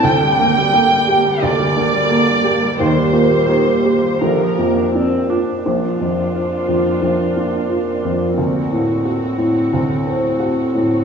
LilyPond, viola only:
\new Staff \with { instrumentName = "Viola" } { \clef bass \time 4/4 \key bes \major \tempo 4 = 88 d16 g16 bes16 g16 d16 g16 bes16 g16 d16 g16 bes16 g16 d16 g16 bes16 g16 | ees16 g16 bes16 g16 ees16 g16 bes16 g16 d16 f16 bes16 d'16 c'8 d'8 | d'1 | c'1 | }